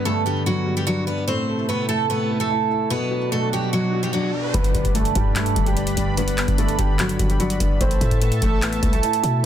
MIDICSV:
0, 0, Header, 1, 9, 480
1, 0, Start_track
1, 0, Key_signature, 1, "major"
1, 0, Tempo, 408163
1, 1502, Time_signature, 4, 2, 24, 8
1, 11120, End_track
2, 0, Start_track
2, 0, Title_t, "Analog synth pad"
2, 0, Program_c, 0, 89
2, 0, Note_on_c, 0, 50, 86
2, 0, Note_on_c, 0, 59, 80
2, 0, Note_on_c, 0, 62, 78
2, 0, Note_on_c, 0, 71, 92
2, 1463, Note_off_c, 0, 50, 0
2, 1463, Note_off_c, 0, 59, 0
2, 1463, Note_off_c, 0, 62, 0
2, 1463, Note_off_c, 0, 71, 0
2, 1501, Note_on_c, 0, 69, 94
2, 1502, Note_on_c, 0, 48, 83
2, 1502, Note_on_c, 0, 57, 77
2, 1502, Note_on_c, 0, 64, 79
2, 3402, Note_off_c, 0, 57, 0
2, 3402, Note_off_c, 0, 64, 0
2, 3402, Note_off_c, 0, 69, 0
2, 3403, Note_off_c, 0, 48, 0
2, 3422, Note_on_c, 0, 47, 84
2, 3422, Note_on_c, 0, 54, 79
2, 3422, Note_on_c, 0, 62, 81
2, 3422, Note_on_c, 0, 66, 97
2, 5322, Note_off_c, 0, 47, 0
2, 5322, Note_off_c, 0, 54, 0
2, 5323, Note_off_c, 0, 62, 0
2, 5323, Note_off_c, 0, 66, 0
2, 5341, Note_on_c, 0, 62, 88
2, 5341, Note_on_c, 0, 71, 80
2, 5341, Note_on_c, 0, 74, 82
2, 5341, Note_on_c, 0, 83, 96
2, 9143, Note_off_c, 0, 62, 0
2, 9143, Note_off_c, 0, 71, 0
2, 9143, Note_off_c, 0, 74, 0
2, 9143, Note_off_c, 0, 83, 0
2, 9182, Note_on_c, 0, 69, 85
2, 9182, Note_on_c, 0, 76, 81
2, 9182, Note_on_c, 0, 81, 95
2, 11083, Note_off_c, 0, 69, 0
2, 11083, Note_off_c, 0, 76, 0
2, 11083, Note_off_c, 0, 81, 0
2, 11120, End_track
3, 0, Start_track
3, 0, Title_t, "Steel-string acoustic guitar"
3, 0, Program_c, 1, 25
3, 63, Note_on_c, 1, 69, 82
3, 72, Note_on_c, 1, 57, 61
3, 257, Note_off_c, 1, 69, 0
3, 262, Note_off_c, 1, 57, 0
3, 303, Note_on_c, 1, 67, 67
3, 312, Note_on_c, 1, 55, 55
3, 497, Note_off_c, 1, 67, 0
3, 503, Note_off_c, 1, 55, 0
3, 544, Note_on_c, 1, 66, 84
3, 553, Note_on_c, 1, 54, 68
3, 881, Note_off_c, 1, 66, 0
3, 886, Note_off_c, 1, 54, 0
3, 902, Note_on_c, 1, 67, 72
3, 912, Note_on_c, 1, 55, 59
3, 999, Note_off_c, 1, 67, 0
3, 1005, Note_off_c, 1, 55, 0
3, 1019, Note_on_c, 1, 66, 91
3, 1029, Note_on_c, 1, 54, 70
3, 1214, Note_off_c, 1, 66, 0
3, 1220, Note_off_c, 1, 54, 0
3, 1258, Note_on_c, 1, 71, 74
3, 1268, Note_on_c, 1, 59, 62
3, 1454, Note_off_c, 1, 71, 0
3, 1460, Note_off_c, 1, 59, 0
3, 1500, Note_on_c, 1, 72, 96
3, 1509, Note_on_c, 1, 60, 78
3, 1952, Note_off_c, 1, 72, 0
3, 1957, Note_off_c, 1, 60, 0
3, 1983, Note_on_c, 1, 71, 77
3, 1993, Note_on_c, 1, 59, 56
3, 2177, Note_off_c, 1, 71, 0
3, 2183, Note_off_c, 1, 59, 0
3, 2219, Note_on_c, 1, 69, 88
3, 2228, Note_on_c, 1, 57, 63
3, 2414, Note_off_c, 1, 69, 0
3, 2420, Note_off_c, 1, 57, 0
3, 2467, Note_on_c, 1, 71, 82
3, 2477, Note_on_c, 1, 59, 65
3, 2803, Note_off_c, 1, 71, 0
3, 2808, Note_off_c, 1, 59, 0
3, 2822, Note_on_c, 1, 69, 77
3, 2831, Note_on_c, 1, 57, 57
3, 3386, Note_off_c, 1, 69, 0
3, 3391, Note_off_c, 1, 57, 0
3, 3415, Note_on_c, 1, 71, 98
3, 3424, Note_on_c, 1, 59, 78
3, 3869, Note_off_c, 1, 71, 0
3, 3874, Note_off_c, 1, 59, 0
3, 3903, Note_on_c, 1, 69, 86
3, 3912, Note_on_c, 1, 57, 65
3, 4097, Note_off_c, 1, 69, 0
3, 4102, Note_off_c, 1, 57, 0
3, 4151, Note_on_c, 1, 67, 76
3, 4161, Note_on_c, 1, 55, 61
3, 4342, Note_off_c, 1, 67, 0
3, 4347, Note_off_c, 1, 55, 0
3, 4385, Note_on_c, 1, 66, 80
3, 4394, Note_on_c, 1, 54, 61
3, 4722, Note_off_c, 1, 66, 0
3, 4727, Note_off_c, 1, 54, 0
3, 4737, Note_on_c, 1, 67, 75
3, 4747, Note_on_c, 1, 55, 58
3, 4836, Note_off_c, 1, 67, 0
3, 4842, Note_off_c, 1, 55, 0
3, 4856, Note_on_c, 1, 66, 87
3, 4866, Note_on_c, 1, 54, 63
3, 5053, Note_off_c, 1, 66, 0
3, 5058, Note_off_c, 1, 54, 0
3, 5341, Note_on_c, 1, 71, 108
3, 5351, Note_on_c, 1, 59, 85
3, 5793, Note_off_c, 1, 71, 0
3, 5798, Note_off_c, 1, 59, 0
3, 5826, Note_on_c, 1, 69, 81
3, 5836, Note_on_c, 1, 57, 66
3, 6019, Note_off_c, 1, 69, 0
3, 6025, Note_off_c, 1, 57, 0
3, 6065, Note_on_c, 1, 67, 82
3, 6075, Note_on_c, 1, 55, 65
3, 6258, Note_off_c, 1, 67, 0
3, 6264, Note_off_c, 1, 55, 0
3, 6298, Note_on_c, 1, 69, 84
3, 6307, Note_on_c, 1, 57, 69
3, 6638, Note_off_c, 1, 69, 0
3, 6643, Note_off_c, 1, 57, 0
3, 6664, Note_on_c, 1, 67, 80
3, 6673, Note_on_c, 1, 55, 61
3, 7227, Note_off_c, 1, 67, 0
3, 7232, Note_off_c, 1, 55, 0
3, 7263, Note_on_c, 1, 71, 97
3, 7272, Note_on_c, 1, 59, 78
3, 7713, Note_off_c, 1, 71, 0
3, 7718, Note_off_c, 1, 59, 0
3, 7743, Note_on_c, 1, 69, 85
3, 7752, Note_on_c, 1, 57, 64
3, 7937, Note_off_c, 1, 69, 0
3, 7942, Note_off_c, 1, 57, 0
3, 7983, Note_on_c, 1, 67, 69
3, 7992, Note_on_c, 1, 55, 57
3, 8177, Note_off_c, 1, 67, 0
3, 8182, Note_off_c, 1, 55, 0
3, 8224, Note_on_c, 1, 66, 88
3, 8233, Note_on_c, 1, 54, 71
3, 8561, Note_off_c, 1, 66, 0
3, 8566, Note_off_c, 1, 54, 0
3, 8583, Note_on_c, 1, 67, 74
3, 8592, Note_on_c, 1, 55, 59
3, 8679, Note_off_c, 1, 67, 0
3, 8685, Note_off_c, 1, 55, 0
3, 8699, Note_on_c, 1, 66, 97
3, 8709, Note_on_c, 1, 54, 72
3, 8895, Note_off_c, 1, 66, 0
3, 8900, Note_off_c, 1, 54, 0
3, 8939, Note_on_c, 1, 71, 77
3, 8948, Note_on_c, 1, 59, 62
3, 9134, Note_off_c, 1, 71, 0
3, 9140, Note_off_c, 1, 59, 0
3, 9180, Note_on_c, 1, 72, 103
3, 9190, Note_on_c, 1, 60, 82
3, 9632, Note_off_c, 1, 72, 0
3, 9637, Note_off_c, 1, 60, 0
3, 9664, Note_on_c, 1, 71, 80
3, 9673, Note_on_c, 1, 59, 56
3, 9857, Note_off_c, 1, 71, 0
3, 9863, Note_off_c, 1, 59, 0
3, 9899, Note_on_c, 1, 69, 91
3, 9909, Note_on_c, 1, 57, 67
3, 10095, Note_off_c, 1, 69, 0
3, 10100, Note_off_c, 1, 57, 0
3, 10158, Note_on_c, 1, 59, 65
3, 10489, Note_off_c, 1, 59, 0
3, 10502, Note_on_c, 1, 69, 79
3, 10512, Note_on_c, 1, 57, 59
3, 11066, Note_off_c, 1, 69, 0
3, 11071, Note_off_c, 1, 57, 0
3, 11120, End_track
4, 0, Start_track
4, 0, Title_t, "Grand piano"
4, 0, Program_c, 2, 0
4, 0, Control_c, 2, 64, 127
4, 0, Note_on_c, 2, 43, 91
4, 0, Note_on_c, 2, 55, 81
4, 0, Note_on_c, 2, 59, 74
4, 0, Note_on_c, 2, 62, 78
4, 62, Note_off_c, 2, 43, 0
4, 62, Note_on_c, 2, 43, 84
4, 304, Note_on_c, 2, 50, 83
4, 523, Note_off_c, 2, 43, 0
4, 540, Note_off_c, 2, 62, 0
4, 541, Note_on_c, 2, 43, 75
4, 777, Note_off_c, 2, 55, 0
4, 777, Note_on_c, 2, 55, 77
4, 1015, Note_on_c, 2, 62, 90
4, 1022, Note_off_c, 2, 59, 0
4, 1247, Note_off_c, 2, 62, 0
4, 1264, Note_on_c, 2, 62, 84
4, 1498, Note_on_c, 2, 45, 93
4, 1499, Note_off_c, 2, 55, 0
4, 1501, Note_off_c, 2, 43, 0
4, 1503, Note_off_c, 2, 50, 0
4, 1503, Note_off_c, 2, 62, 0
4, 1517, Control_c, 2, 64, 0
4, 1694, Control_c, 2, 64, 127
4, 1740, Note_on_c, 2, 57, 88
4, 1965, Note_off_c, 2, 45, 0
4, 1983, Note_on_c, 2, 45, 81
4, 2203, Note_off_c, 2, 57, 0
4, 2221, Note_on_c, 2, 57, 84
4, 2438, Note_off_c, 2, 45, 0
4, 2455, Note_on_c, 2, 45, 86
4, 2688, Note_off_c, 2, 57, 0
4, 2705, Note_on_c, 2, 57, 82
4, 2944, Note_on_c, 2, 64, 87
4, 3165, Note_off_c, 2, 64, 0
4, 3183, Note_on_c, 2, 64, 81
4, 3415, Note_on_c, 2, 47, 95
4, 3418, Note_off_c, 2, 45, 0
4, 3422, Note_off_c, 2, 64, 0
4, 3423, Note_off_c, 2, 57, 0
4, 3438, Control_c, 2, 64, 0
4, 3609, Control_c, 2, 64, 127
4, 3657, Note_on_c, 2, 54, 83
4, 3881, Note_off_c, 2, 47, 0
4, 3899, Note_on_c, 2, 47, 84
4, 4126, Note_off_c, 2, 54, 0
4, 4143, Note_on_c, 2, 54, 77
4, 4368, Note_off_c, 2, 47, 0
4, 4386, Note_on_c, 2, 47, 87
4, 4606, Note_off_c, 2, 54, 0
4, 4623, Note_on_c, 2, 54, 76
4, 4859, Note_on_c, 2, 62, 95
4, 5085, Note_off_c, 2, 62, 0
4, 5103, Note_on_c, 2, 62, 83
4, 5342, Note_off_c, 2, 54, 0
4, 5342, Note_off_c, 2, 62, 0
4, 5344, Note_off_c, 2, 47, 0
4, 5344, Note_on_c, 2, 43, 91
4, 5357, Control_c, 2, 64, 0
4, 5540, Control_c, 2, 64, 127
4, 5581, Note_on_c, 2, 55, 77
4, 5801, Note_off_c, 2, 43, 0
4, 5819, Note_on_c, 2, 43, 80
4, 6047, Note_off_c, 2, 55, 0
4, 6065, Note_on_c, 2, 55, 88
4, 6281, Note_off_c, 2, 43, 0
4, 6298, Note_on_c, 2, 43, 88
4, 6526, Note_off_c, 2, 55, 0
4, 6544, Note_on_c, 2, 55, 83
4, 6782, Note_on_c, 2, 62, 93
4, 7001, Note_off_c, 2, 62, 0
4, 7019, Note_on_c, 2, 62, 80
4, 7246, Note_off_c, 2, 43, 0
4, 7263, Note_on_c, 2, 43, 96
4, 7503, Note_on_c, 2, 59, 78
4, 7725, Note_off_c, 2, 43, 0
4, 7742, Note_on_c, 2, 43, 86
4, 7743, Note_off_c, 2, 55, 0
4, 7984, Note_on_c, 2, 50, 89
4, 8204, Note_off_c, 2, 43, 0
4, 8220, Note_off_c, 2, 62, 0
4, 8221, Note_on_c, 2, 43, 81
4, 8457, Note_on_c, 2, 55, 83
4, 8695, Note_on_c, 2, 62, 92
4, 8702, Note_off_c, 2, 59, 0
4, 8927, Note_off_c, 2, 62, 0
4, 8945, Note_on_c, 2, 62, 92
4, 9178, Note_on_c, 2, 45, 94
4, 9179, Note_off_c, 2, 55, 0
4, 9181, Note_off_c, 2, 43, 0
4, 9183, Note_off_c, 2, 50, 0
4, 9183, Note_off_c, 2, 62, 0
4, 9195, Control_c, 2, 64, 0
4, 9370, Control_c, 2, 64, 127
4, 9420, Note_on_c, 2, 57, 86
4, 9645, Note_off_c, 2, 45, 0
4, 9662, Note_on_c, 2, 45, 84
4, 9883, Note_off_c, 2, 57, 0
4, 9900, Note_on_c, 2, 57, 85
4, 10118, Note_off_c, 2, 45, 0
4, 10135, Note_on_c, 2, 45, 89
4, 10368, Note_off_c, 2, 57, 0
4, 10385, Note_on_c, 2, 57, 85
4, 10625, Note_on_c, 2, 64, 92
4, 10845, Note_off_c, 2, 64, 0
4, 10863, Note_on_c, 2, 64, 80
4, 11098, Note_off_c, 2, 45, 0
4, 11102, Note_off_c, 2, 64, 0
4, 11103, Note_off_c, 2, 57, 0
4, 11118, Control_c, 2, 64, 0
4, 11120, End_track
5, 0, Start_track
5, 0, Title_t, "808-style bass"
5, 0, Program_c, 3, 38
5, 5341, Note_on_c, 3, 31, 109
5, 5572, Note_off_c, 3, 31, 0
5, 5581, Note_on_c, 3, 31, 105
5, 6042, Note_off_c, 3, 31, 0
5, 6062, Note_on_c, 3, 43, 103
5, 6523, Note_off_c, 3, 43, 0
5, 6541, Note_on_c, 3, 31, 111
5, 7002, Note_off_c, 3, 31, 0
5, 7021, Note_on_c, 3, 31, 102
5, 7597, Note_off_c, 3, 31, 0
5, 7621, Note_on_c, 3, 31, 99
5, 7967, Note_off_c, 3, 31, 0
5, 7982, Note_on_c, 3, 31, 102
5, 8443, Note_off_c, 3, 31, 0
5, 8461, Note_on_c, 3, 31, 109
5, 8922, Note_off_c, 3, 31, 0
5, 8941, Note_on_c, 3, 31, 100
5, 9172, Note_off_c, 3, 31, 0
5, 9182, Note_on_c, 3, 33, 106
5, 9412, Note_off_c, 3, 33, 0
5, 9421, Note_on_c, 3, 45, 104
5, 9882, Note_off_c, 3, 45, 0
5, 9903, Note_on_c, 3, 33, 103
5, 10363, Note_off_c, 3, 33, 0
5, 10381, Note_on_c, 3, 36, 108
5, 10612, Note_off_c, 3, 36, 0
5, 10861, Note_on_c, 3, 47, 103
5, 11120, Note_off_c, 3, 47, 0
5, 11120, End_track
6, 0, Start_track
6, 0, Title_t, "Downlifter"
6, 0, Program_c, 4, 103
6, 0, Note_on_c, 4, 60, 80
6, 1502, Note_off_c, 4, 60, 0
6, 11120, End_track
7, 0, Start_track
7, 0, Title_t, "Impact"
7, 0, Program_c, 5, 103
7, 5341, Note_on_c, 5, 60, 82
7, 7261, Note_off_c, 5, 60, 0
7, 11120, End_track
8, 0, Start_track
8, 0, Title_t, "Riser"
8, 0, Program_c, 6, 103
8, 3421, Note_on_c, 6, 60, 83
8, 5342, Note_off_c, 6, 60, 0
8, 11120, End_track
9, 0, Start_track
9, 0, Title_t, "Drums"
9, 5341, Note_on_c, 9, 36, 120
9, 5341, Note_on_c, 9, 42, 84
9, 5459, Note_off_c, 9, 36, 0
9, 5459, Note_off_c, 9, 42, 0
9, 5461, Note_on_c, 9, 42, 62
9, 5579, Note_off_c, 9, 42, 0
9, 5581, Note_on_c, 9, 36, 88
9, 5581, Note_on_c, 9, 42, 68
9, 5698, Note_off_c, 9, 36, 0
9, 5699, Note_off_c, 9, 42, 0
9, 5701, Note_on_c, 9, 36, 90
9, 5701, Note_on_c, 9, 42, 52
9, 5819, Note_off_c, 9, 36, 0
9, 5819, Note_off_c, 9, 42, 0
9, 5821, Note_on_c, 9, 42, 83
9, 5939, Note_off_c, 9, 42, 0
9, 5941, Note_on_c, 9, 42, 53
9, 6059, Note_off_c, 9, 42, 0
9, 6061, Note_on_c, 9, 42, 80
9, 6062, Note_on_c, 9, 36, 98
9, 6179, Note_off_c, 9, 42, 0
9, 6180, Note_off_c, 9, 36, 0
9, 6300, Note_on_c, 9, 39, 108
9, 6301, Note_on_c, 9, 42, 91
9, 6418, Note_off_c, 9, 39, 0
9, 6419, Note_off_c, 9, 42, 0
9, 6422, Note_on_c, 9, 42, 60
9, 6539, Note_off_c, 9, 42, 0
9, 6541, Note_on_c, 9, 36, 100
9, 6541, Note_on_c, 9, 42, 81
9, 6659, Note_off_c, 9, 36, 0
9, 6659, Note_off_c, 9, 42, 0
9, 6661, Note_on_c, 9, 42, 52
9, 6779, Note_off_c, 9, 42, 0
9, 6781, Note_on_c, 9, 42, 81
9, 6899, Note_off_c, 9, 42, 0
9, 6901, Note_on_c, 9, 42, 62
9, 7019, Note_off_c, 9, 42, 0
9, 7021, Note_on_c, 9, 42, 81
9, 7139, Note_off_c, 9, 42, 0
9, 7261, Note_on_c, 9, 42, 80
9, 7379, Note_off_c, 9, 42, 0
9, 7382, Note_on_c, 9, 42, 61
9, 7499, Note_off_c, 9, 42, 0
9, 7502, Note_on_c, 9, 39, 97
9, 7502, Note_on_c, 9, 42, 68
9, 7619, Note_off_c, 9, 39, 0
9, 7619, Note_off_c, 9, 42, 0
9, 7621, Note_on_c, 9, 36, 93
9, 7622, Note_on_c, 9, 42, 50
9, 7739, Note_off_c, 9, 36, 0
9, 7739, Note_off_c, 9, 42, 0
9, 7741, Note_on_c, 9, 42, 83
9, 7859, Note_off_c, 9, 42, 0
9, 7861, Note_on_c, 9, 42, 53
9, 7979, Note_off_c, 9, 42, 0
9, 7981, Note_on_c, 9, 42, 81
9, 7982, Note_on_c, 9, 36, 101
9, 8099, Note_off_c, 9, 42, 0
9, 8100, Note_off_c, 9, 36, 0
9, 8220, Note_on_c, 9, 39, 112
9, 8221, Note_on_c, 9, 42, 90
9, 8338, Note_off_c, 9, 39, 0
9, 8339, Note_off_c, 9, 42, 0
9, 8341, Note_on_c, 9, 42, 59
9, 8459, Note_off_c, 9, 42, 0
9, 8461, Note_on_c, 9, 36, 95
9, 8461, Note_on_c, 9, 42, 82
9, 8579, Note_off_c, 9, 36, 0
9, 8579, Note_off_c, 9, 42, 0
9, 8581, Note_on_c, 9, 42, 53
9, 8699, Note_off_c, 9, 42, 0
9, 8701, Note_on_c, 9, 42, 76
9, 8819, Note_off_c, 9, 42, 0
9, 8821, Note_on_c, 9, 42, 62
9, 8939, Note_off_c, 9, 42, 0
9, 8941, Note_on_c, 9, 36, 83
9, 8941, Note_on_c, 9, 42, 82
9, 9059, Note_off_c, 9, 36, 0
9, 9059, Note_off_c, 9, 42, 0
9, 9182, Note_on_c, 9, 36, 120
9, 9182, Note_on_c, 9, 42, 80
9, 9299, Note_off_c, 9, 36, 0
9, 9299, Note_off_c, 9, 42, 0
9, 9301, Note_on_c, 9, 42, 62
9, 9419, Note_off_c, 9, 42, 0
9, 9421, Note_on_c, 9, 36, 90
9, 9422, Note_on_c, 9, 42, 67
9, 9538, Note_off_c, 9, 36, 0
9, 9539, Note_off_c, 9, 42, 0
9, 9541, Note_on_c, 9, 36, 92
9, 9542, Note_on_c, 9, 42, 51
9, 9659, Note_off_c, 9, 36, 0
9, 9659, Note_off_c, 9, 42, 0
9, 9662, Note_on_c, 9, 42, 83
9, 9779, Note_off_c, 9, 42, 0
9, 9782, Note_on_c, 9, 42, 54
9, 9899, Note_off_c, 9, 42, 0
9, 9902, Note_on_c, 9, 42, 81
9, 9903, Note_on_c, 9, 36, 98
9, 10019, Note_off_c, 9, 42, 0
9, 10020, Note_off_c, 9, 36, 0
9, 10141, Note_on_c, 9, 39, 108
9, 10141, Note_on_c, 9, 42, 89
9, 10258, Note_off_c, 9, 39, 0
9, 10259, Note_off_c, 9, 42, 0
9, 10262, Note_on_c, 9, 42, 59
9, 10379, Note_off_c, 9, 42, 0
9, 10381, Note_on_c, 9, 36, 97
9, 10381, Note_on_c, 9, 42, 80
9, 10499, Note_off_c, 9, 36, 0
9, 10499, Note_off_c, 9, 42, 0
9, 10502, Note_on_c, 9, 42, 55
9, 10619, Note_off_c, 9, 42, 0
9, 10621, Note_on_c, 9, 42, 80
9, 10739, Note_off_c, 9, 42, 0
9, 10741, Note_on_c, 9, 42, 64
9, 10859, Note_off_c, 9, 42, 0
9, 10861, Note_on_c, 9, 42, 80
9, 10979, Note_off_c, 9, 42, 0
9, 11120, End_track
0, 0, End_of_file